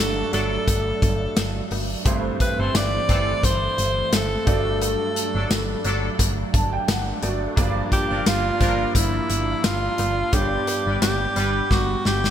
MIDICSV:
0, 0, Header, 1, 7, 480
1, 0, Start_track
1, 0, Tempo, 689655
1, 1430, Time_signature, 4, 2, 24, 8
1, 8563, End_track
2, 0, Start_track
2, 0, Title_t, "Alto saxophone"
2, 0, Program_c, 0, 65
2, 0, Note_on_c, 0, 69, 100
2, 235, Note_off_c, 0, 69, 0
2, 238, Note_on_c, 0, 69, 100
2, 1167, Note_off_c, 0, 69, 0
2, 1681, Note_on_c, 0, 71, 94
2, 1814, Note_on_c, 0, 72, 96
2, 1824, Note_off_c, 0, 71, 0
2, 1920, Note_on_c, 0, 74, 108
2, 1930, Note_off_c, 0, 72, 0
2, 2398, Note_on_c, 0, 72, 108
2, 2409, Note_off_c, 0, 74, 0
2, 2879, Note_on_c, 0, 69, 93
2, 2890, Note_off_c, 0, 72, 0
2, 3355, Note_off_c, 0, 69, 0
2, 3361, Note_on_c, 0, 69, 86
2, 4048, Note_off_c, 0, 69, 0
2, 5518, Note_on_c, 0, 67, 103
2, 5756, Note_on_c, 0, 65, 102
2, 5766, Note_off_c, 0, 67, 0
2, 6233, Note_off_c, 0, 65, 0
2, 6236, Note_on_c, 0, 64, 102
2, 6713, Note_on_c, 0, 65, 107
2, 6723, Note_off_c, 0, 64, 0
2, 7192, Note_on_c, 0, 67, 110
2, 7203, Note_off_c, 0, 65, 0
2, 7668, Note_off_c, 0, 67, 0
2, 7672, Note_on_c, 0, 67, 101
2, 8153, Note_on_c, 0, 66, 102
2, 8163, Note_off_c, 0, 67, 0
2, 8398, Note_on_c, 0, 67, 96
2, 8409, Note_off_c, 0, 66, 0
2, 8563, Note_off_c, 0, 67, 0
2, 8563, End_track
3, 0, Start_track
3, 0, Title_t, "Grand piano"
3, 0, Program_c, 1, 0
3, 0, Control_c, 1, 64, 127
3, 0, Note_on_c, 1, 43, 68
3, 0, Note_on_c, 1, 57, 71
3, 0, Note_on_c, 1, 62, 62
3, 0, Note_on_c, 1, 66, 60
3, 0, Note_on_c, 1, 74, 75
3, 203, Note_off_c, 1, 43, 0
3, 1400, Note_off_c, 1, 57, 0
3, 1403, Note_off_c, 1, 62, 0
3, 1405, Note_off_c, 1, 66, 0
3, 1408, Note_off_c, 1, 74, 0
3, 1425, Note_on_c, 1, 57, 79
3, 1430, Note_on_c, 1, 60, 70
3, 1433, Note_on_c, 1, 43, 77
3, 1435, Note_on_c, 1, 64, 70
3, 1440, Note_on_c, 1, 72, 82
3, 1441, Control_c, 1, 64, 0
3, 1562, Control_c, 1, 64, 127
3, 2124, Note_off_c, 1, 43, 0
3, 3080, Note_off_c, 1, 57, 0
3, 3082, Note_off_c, 1, 60, 0
3, 3085, Note_off_c, 1, 64, 0
3, 3088, Note_off_c, 1, 72, 0
3, 3103, Note_on_c, 1, 57, 67
3, 3108, Note_on_c, 1, 62, 62
3, 3110, Note_on_c, 1, 43, 60
3, 3113, Note_on_c, 1, 66, 58
3, 3119, Control_c, 1, 64, 0
3, 3119, Note_on_c, 1, 74, 74
3, 3228, Control_c, 1, 64, 127
3, 3803, Note_off_c, 1, 43, 0
3, 4549, Note_on_c, 1, 81, 73
3, 4673, Note_off_c, 1, 81, 0
3, 4682, Note_on_c, 1, 79, 66
3, 4783, Note_off_c, 1, 79, 0
3, 4789, Note_on_c, 1, 78, 71
3, 4999, Note_off_c, 1, 57, 0
3, 5001, Note_off_c, 1, 62, 0
3, 5004, Note_off_c, 1, 66, 0
3, 5007, Note_off_c, 1, 74, 0
3, 5013, Note_off_c, 1, 78, 0
3, 5024, Note_on_c, 1, 57, 59
3, 5028, Note_on_c, 1, 62, 52
3, 5029, Note_on_c, 1, 74, 72
3, 5030, Note_on_c, 1, 66, 55
3, 5258, Note_off_c, 1, 62, 0
3, 5262, Note_on_c, 1, 58, 84
3, 5267, Note_off_c, 1, 57, 0
3, 5267, Note_off_c, 1, 74, 0
3, 5269, Note_on_c, 1, 62, 76
3, 5270, Note_off_c, 1, 66, 0
3, 5270, Note_on_c, 1, 43, 83
3, 5274, Note_on_c, 1, 53, 75
3, 5278, Note_on_c, 1, 74, 93
3, 5280, Control_c, 1, 64, 0
3, 5406, Control_c, 1, 64, 127
3, 5962, Note_off_c, 1, 43, 0
3, 7159, Note_off_c, 1, 58, 0
3, 7162, Note_off_c, 1, 62, 0
3, 7164, Note_off_c, 1, 53, 0
3, 7166, Note_off_c, 1, 74, 0
3, 7182, Note_on_c, 1, 59, 69
3, 7189, Note_on_c, 1, 62, 66
3, 7191, Note_on_c, 1, 43, 69
3, 7192, Note_on_c, 1, 55, 61
3, 7199, Note_on_c, 1, 73, 62
3, 7200, Control_c, 1, 64, 0
3, 7243, Note_on_c, 1, 74, 73
3, 7244, Note_off_c, 1, 73, 0
3, 7331, Control_c, 1, 64, 127
3, 7883, Note_off_c, 1, 43, 0
3, 8563, Note_off_c, 1, 55, 0
3, 8563, Note_off_c, 1, 59, 0
3, 8563, Note_off_c, 1, 62, 0
3, 8563, Note_off_c, 1, 74, 0
3, 8563, End_track
4, 0, Start_track
4, 0, Title_t, "Horn section"
4, 0, Program_c, 2, 61
4, 231, Note_on_c, 2, 54, 93
4, 231, Note_on_c, 2, 62, 90
4, 231, Note_on_c, 2, 69, 97
4, 384, Note_off_c, 2, 54, 0
4, 384, Note_off_c, 2, 62, 0
4, 384, Note_off_c, 2, 69, 0
4, 1804, Note_on_c, 2, 52, 77
4, 1804, Note_on_c, 2, 60, 80
4, 1805, Note_on_c, 2, 69, 91
4, 1895, Note_off_c, 2, 52, 0
4, 1895, Note_off_c, 2, 60, 0
4, 1896, Note_off_c, 2, 69, 0
4, 2150, Note_on_c, 2, 69, 104
4, 2151, Note_on_c, 2, 52, 93
4, 2151, Note_on_c, 2, 60, 94
4, 2303, Note_off_c, 2, 69, 0
4, 2304, Note_off_c, 2, 52, 0
4, 2304, Note_off_c, 2, 60, 0
4, 3722, Note_on_c, 2, 62, 79
4, 3722, Note_on_c, 2, 69, 92
4, 3723, Note_on_c, 2, 54, 77
4, 3814, Note_off_c, 2, 62, 0
4, 3814, Note_off_c, 2, 69, 0
4, 3815, Note_off_c, 2, 54, 0
4, 4071, Note_on_c, 2, 54, 92
4, 4071, Note_on_c, 2, 62, 95
4, 4071, Note_on_c, 2, 69, 106
4, 4224, Note_off_c, 2, 54, 0
4, 4224, Note_off_c, 2, 62, 0
4, 4224, Note_off_c, 2, 69, 0
4, 5642, Note_on_c, 2, 62, 81
4, 5642, Note_on_c, 2, 70, 91
4, 5643, Note_on_c, 2, 53, 79
4, 5734, Note_off_c, 2, 62, 0
4, 5734, Note_off_c, 2, 70, 0
4, 5735, Note_off_c, 2, 53, 0
4, 5989, Note_on_c, 2, 53, 96
4, 5990, Note_on_c, 2, 62, 96
4, 5990, Note_on_c, 2, 70, 106
4, 6143, Note_off_c, 2, 53, 0
4, 6143, Note_off_c, 2, 62, 0
4, 6143, Note_off_c, 2, 70, 0
4, 7563, Note_on_c, 2, 55, 82
4, 7563, Note_on_c, 2, 62, 82
4, 7563, Note_on_c, 2, 71, 88
4, 7654, Note_off_c, 2, 55, 0
4, 7655, Note_off_c, 2, 62, 0
4, 7655, Note_off_c, 2, 71, 0
4, 7909, Note_on_c, 2, 62, 92
4, 7909, Note_on_c, 2, 71, 102
4, 7910, Note_on_c, 2, 55, 98
4, 8063, Note_off_c, 2, 55, 0
4, 8063, Note_off_c, 2, 62, 0
4, 8063, Note_off_c, 2, 71, 0
4, 8563, End_track
5, 0, Start_track
5, 0, Title_t, "Analog synth pad"
5, 0, Program_c, 3, 89
5, 0, Note_on_c, 3, 54, 80
5, 0, Note_on_c, 3, 57, 73
5, 0, Note_on_c, 3, 62, 84
5, 1412, Note_off_c, 3, 54, 0
5, 1412, Note_off_c, 3, 62, 0
5, 1434, Note_on_c, 3, 52, 79
5, 1434, Note_on_c, 3, 60, 85
5, 3095, Note_off_c, 3, 52, 0
5, 3095, Note_off_c, 3, 60, 0
5, 3110, Note_on_c, 3, 54, 74
5, 3110, Note_on_c, 3, 62, 86
5, 5243, Note_off_c, 3, 57, 0
5, 5249, Note_off_c, 3, 54, 0
5, 5270, Note_on_c, 3, 58, 73
5, 5271, Note_on_c, 3, 53, 77
5, 7171, Note_off_c, 3, 58, 0
5, 7172, Note_off_c, 3, 53, 0
5, 7188, Note_on_c, 3, 55, 82
5, 7189, Note_on_c, 3, 59, 75
5, 8563, Note_off_c, 3, 55, 0
5, 8563, Note_off_c, 3, 59, 0
5, 8563, Note_off_c, 3, 62, 0
5, 8563, End_track
6, 0, Start_track
6, 0, Title_t, "FM bass"
6, 0, Program_c, 4, 39
6, 0, Note_on_c, 4, 31, 96
6, 164, Note_off_c, 4, 31, 0
6, 232, Note_on_c, 4, 31, 102
6, 405, Note_off_c, 4, 31, 0
6, 471, Note_on_c, 4, 31, 104
6, 644, Note_off_c, 4, 31, 0
6, 712, Note_on_c, 4, 31, 109
6, 884, Note_off_c, 4, 31, 0
6, 953, Note_on_c, 4, 31, 101
6, 1125, Note_off_c, 4, 31, 0
6, 1192, Note_on_c, 4, 31, 91
6, 1364, Note_off_c, 4, 31, 0
6, 1431, Note_on_c, 4, 31, 105
6, 1604, Note_off_c, 4, 31, 0
6, 1803, Note_on_c, 4, 31, 91
6, 1881, Note_off_c, 4, 31, 0
6, 1911, Note_on_c, 4, 31, 107
6, 2084, Note_off_c, 4, 31, 0
6, 2151, Note_on_c, 4, 31, 99
6, 2324, Note_off_c, 4, 31, 0
6, 2391, Note_on_c, 4, 31, 106
6, 2564, Note_off_c, 4, 31, 0
6, 2632, Note_on_c, 4, 31, 101
6, 2804, Note_off_c, 4, 31, 0
6, 2872, Note_on_c, 4, 31, 107
6, 3044, Note_off_c, 4, 31, 0
6, 3112, Note_on_c, 4, 31, 100
6, 3457, Note_off_c, 4, 31, 0
6, 3723, Note_on_c, 4, 31, 101
6, 3801, Note_off_c, 4, 31, 0
6, 3831, Note_on_c, 4, 31, 95
6, 4004, Note_off_c, 4, 31, 0
6, 4071, Note_on_c, 4, 31, 108
6, 4244, Note_off_c, 4, 31, 0
6, 4310, Note_on_c, 4, 31, 112
6, 4483, Note_off_c, 4, 31, 0
6, 4551, Note_on_c, 4, 31, 102
6, 4724, Note_off_c, 4, 31, 0
6, 4790, Note_on_c, 4, 31, 106
6, 4963, Note_off_c, 4, 31, 0
6, 5031, Note_on_c, 4, 31, 96
6, 5204, Note_off_c, 4, 31, 0
6, 5271, Note_on_c, 4, 31, 104
6, 5444, Note_off_c, 4, 31, 0
6, 5644, Note_on_c, 4, 31, 96
6, 5721, Note_off_c, 4, 31, 0
6, 5753, Note_on_c, 4, 31, 99
6, 5925, Note_off_c, 4, 31, 0
6, 5990, Note_on_c, 4, 31, 101
6, 6163, Note_off_c, 4, 31, 0
6, 6229, Note_on_c, 4, 31, 107
6, 6402, Note_off_c, 4, 31, 0
6, 6472, Note_on_c, 4, 31, 98
6, 6644, Note_off_c, 4, 31, 0
6, 6711, Note_on_c, 4, 31, 109
6, 6884, Note_off_c, 4, 31, 0
6, 6952, Note_on_c, 4, 31, 110
6, 7124, Note_off_c, 4, 31, 0
6, 7190, Note_on_c, 4, 31, 104
6, 7363, Note_off_c, 4, 31, 0
6, 7562, Note_on_c, 4, 31, 90
6, 7640, Note_off_c, 4, 31, 0
6, 7670, Note_on_c, 4, 31, 118
6, 7843, Note_off_c, 4, 31, 0
6, 7911, Note_on_c, 4, 31, 102
6, 8083, Note_off_c, 4, 31, 0
6, 8148, Note_on_c, 4, 31, 110
6, 8322, Note_off_c, 4, 31, 0
6, 8392, Note_on_c, 4, 31, 104
6, 8563, Note_off_c, 4, 31, 0
6, 8563, End_track
7, 0, Start_track
7, 0, Title_t, "Drums"
7, 231, Note_on_c, 9, 42, 75
7, 300, Note_off_c, 9, 42, 0
7, 470, Note_on_c, 9, 36, 94
7, 472, Note_on_c, 9, 56, 66
7, 473, Note_on_c, 9, 42, 108
7, 540, Note_off_c, 9, 36, 0
7, 542, Note_off_c, 9, 56, 0
7, 543, Note_off_c, 9, 42, 0
7, 712, Note_on_c, 9, 36, 96
7, 713, Note_on_c, 9, 42, 78
7, 781, Note_off_c, 9, 36, 0
7, 782, Note_off_c, 9, 42, 0
7, 950, Note_on_c, 9, 42, 92
7, 950, Note_on_c, 9, 54, 60
7, 951, Note_on_c, 9, 38, 112
7, 953, Note_on_c, 9, 56, 72
7, 1020, Note_off_c, 9, 42, 0
7, 1020, Note_off_c, 9, 54, 0
7, 1021, Note_off_c, 9, 38, 0
7, 1022, Note_off_c, 9, 56, 0
7, 1190, Note_on_c, 9, 46, 77
7, 1196, Note_on_c, 9, 56, 73
7, 1259, Note_off_c, 9, 46, 0
7, 1266, Note_off_c, 9, 56, 0
7, 1431, Note_on_c, 9, 36, 121
7, 1431, Note_on_c, 9, 42, 85
7, 1435, Note_on_c, 9, 56, 73
7, 1501, Note_off_c, 9, 36, 0
7, 1501, Note_off_c, 9, 42, 0
7, 1504, Note_off_c, 9, 56, 0
7, 1672, Note_on_c, 9, 36, 92
7, 1672, Note_on_c, 9, 42, 73
7, 1741, Note_off_c, 9, 36, 0
7, 1741, Note_off_c, 9, 42, 0
7, 1912, Note_on_c, 9, 54, 63
7, 1913, Note_on_c, 9, 38, 112
7, 1913, Note_on_c, 9, 42, 100
7, 1915, Note_on_c, 9, 56, 67
7, 1981, Note_off_c, 9, 54, 0
7, 1982, Note_off_c, 9, 42, 0
7, 1983, Note_off_c, 9, 38, 0
7, 1985, Note_off_c, 9, 56, 0
7, 2150, Note_on_c, 9, 42, 73
7, 2151, Note_on_c, 9, 36, 89
7, 2220, Note_off_c, 9, 42, 0
7, 2221, Note_off_c, 9, 36, 0
7, 2390, Note_on_c, 9, 36, 90
7, 2392, Note_on_c, 9, 56, 67
7, 2394, Note_on_c, 9, 42, 103
7, 2460, Note_off_c, 9, 36, 0
7, 2461, Note_off_c, 9, 56, 0
7, 2464, Note_off_c, 9, 42, 0
7, 2633, Note_on_c, 9, 42, 76
7, 2703, Note_off_c, 9, 42, 0
7, 2871, Note_on_c, 9, 42, 92
7, 2871, Note_on_c, 9, 54, 65
7, 2873, Note_on_c, 9, 38, 107
7, 2873, Note_on_c, 9, 56, 68
7, 2941, Note_off_c, 9, 42, 0
7, 2941, Note_off_c, 9, 54, 0
7, 2942, Note_off_c, 9, 38, 0
7, 2943, Note_off_c, 9, 56, 0
7, 3111, Note_on_c, 9, 42, 75
7, 3112, Note_on_c, 9, 36, 108
7, 3113, Note_on_c, 9, 56, 76
7, 3180, Note_off_c, 9, 42, 0
7, 3181, Note_off_c, 9, 36, 0
7, 3183, Note_off_c, 9, 56, 0
7, 3351, Note_on_c, 9, 42, 84
7, 3353, Note_on_c, 9, 56, 74
7, 3421, Note_off_c, 9, 42, 0
7, 3423, Note_off_c, 9, 56, 0
7, 3594, Note_on_c, 9, 42, 81
7, 3663, Note_off_c, 9, 42, 0
7, 3832, Note_on_c, 9, 54, 66
7, 3833, Note_on_c, 9, 38, 109
7, 3833, Note_on_c, 9, 42, 98
7, 3833, Note_on_c, 9, 56, 68
7, 3901, Note_off_c, 9, 54, 0
7, 3902, Note_off_c, 9, 42, 0
7, 3902, Note_off_c, 9, 56, 0
7, 3903, Note_off_c, 9, 38, 0
7, 4068, Note_on_c, 9, 42, 74
7, 4138, Note_off_c, 9, 42, 0
7, 4309, Note_on_c, 9, 36, 89
7, 4311, Note_on_c, 9, 56, 62
7, 4312, Note_on_c, 9, 42, 107
7, 4379, Note_off_c, 9, 36, 0
7, 4381, Note_off_c, 9, 56, 0
7, 4382, Note_off_c, 9, 42, 0
7, 4551, Note_on_c, 9, 36, 104
7, 4551, Note_on_c, 9, 42, 81
7, 4621, Note_off_c, 9, 36, 0
7, 4621, Note_off_c, 9, 42, 0
7, 4791, Note_on_c, 9, 42, 91
7, 4791, Note_on_c, 9, 54, 64
7, 4792, Note_on_c, 9, 38, 107
7, 4792, Note_on_c, 9, 56, 70
7, 4860, Note_off_c, 9, 54, 0
7, 4861, Note_off_c, 9, 42, 0
7, 4862, Note_off_c, 9, 38, 0
7, 4862, Note_off_c, 9, 56, 0
7, 5029, Note_on_c, 9, 42, 79
7, 5034, Note_on_c, 9, 56, 77
7, 5098, Note_off_c, 9, 42, 0
7, 5104, Note_off_c, 9, 56, 0
7, 5271, Note_on_c, 9, 36, 126
7, 5271, Note_on_c, 9, 42, 86
7, 5272, Note_on_c, 9, 56, 70
7, 5340, Note_off_c, 9, 36, 0
7, 5341, Note_off_c, 9, 42, 0
7, 5342, Note_off_c, 9, 56, 0
7, 5511, Note_on_c, 9, 36, 90
7, 5512, Note_on_c, 9, 42, 77
7, 5581, Note_off_c, 9, 36, 0
7, 5582, Note_off_c, 9, 42, 0
7, 5751, Note_on_c, 9, 54, 66
7, 5752, Note_on_c, 9, 38, 106
7, 5752, Note_on_c, 9, 42, 101
7, 5754, Note_on_c, 9, 56, 71
7, 5820, Note_off_c, 9, 54, 0
7, 5821, Note_off_c, 9, 42, 0
7, 5822, Note_off_c, 9, 38, 0
7, 5824, Note_off_c, 9, 56, 0
7, 5989, Note_on_c, 9, 42, 72
7, 5990, Note_on_c, 9, 36, 87
7, 6059, Note_off_c, 9, 42, 0
7, 6060, Note_off_c, 9, 36, 0
7, 6229, Note_on_c, 9, 36, 88
7, 6232, Note_on_c, 9, 42, 108
7, 6234, Note_on_c, 9, 56, 63
7, 6298, Note_off_c, 9, 36, 0
7, 6302, Note_off_c, 9, 42, 0
7, 6304, Note_off_c, 9, 56, 0
7, 6470, Note_on_c, 9, 42, 80
7, 6540, Note_off_c, 9, 42, 0
7, 6709, Note_on_c, 9, 42, 93
7, 6709, Note_on_c, 9, 54, 65
7, 6710, Note_on_c, 9, 38, 112
7, 6713, Note_on_c, 9, 56, 71
7, 6778, Note_off_c, 9, 54, 0
7, 6779, Note_off_c, 9, 42, 0
7, 6780, Note_off_c, 9, 38, 0
7, 6783, Note_off_c, 9, 56, 0
7, 6947, Note_on_c, 9, 42, 76
7, 6955, Note_on_c, 9, 56, 74
7, 7017, Note_off_c, 9, 42, 0
7, 7025, Note_off_c, 9, 56, 0
7, 7188, Note_on_c, 9, 42, 89
7, 7189, Note_on_c, 9, 36, 118
7, 7194, Note_on_c, 9, 56, 74
7, 7258, Note_off_c, 9, 42, 0
7, 7259, Note_off_c, 9, 36, 0
7, 7264, Note_off_c, 9, 56, 0
7, 7429, Note_on_c, 9, 42, 78
7, 7429, Note_on_c, 9, 56, 77
7, 7498, Note_off_c, 9, 42, 0
7, 7499, Note_off_c, 9, 56, 0
7, 7669, Note_on_c, 9, 54, 65
7, 7670, Note_on_c, 9, 38, 108
7, 7670, Note_on_c, 9, 42, 99
7, 7675, Note_on_c, 9, 56, 65
7, 7738, Note_off_c, 9, 54, 0
7, 7739, Note_off_c, 9, 42, 0
7, 7740, Note_off_c, 9, 38, 0
7, 7745, Note_off_c, 9, 56, 0
7, 7907, Note_on_c, 9, 42, 75
7, 7977, Note_off_c, 9, 42, 0
7, 8148, Note_on_c, 9, 36, 96
7, 8149, Note_on_c, 9, 38, 60
7, 8154, Note_on_c, 9, 56, 64
7, 8218, Note_off_c, 9, 36, 0
7, 8219, Note_off_c, 9, 38, 0
7, 8224, Note_off_c, 9, 56, 0
7, 8389, Note_on_c, 9, 38, 76
7, 8458, Note_off_c, 9, 38, 0
7, 8520, Note_on_c, 9, 38, 73
7, 8563, Note_off_c, 9, 38, 0
7, 8563, End_track
0, 0, End_of_file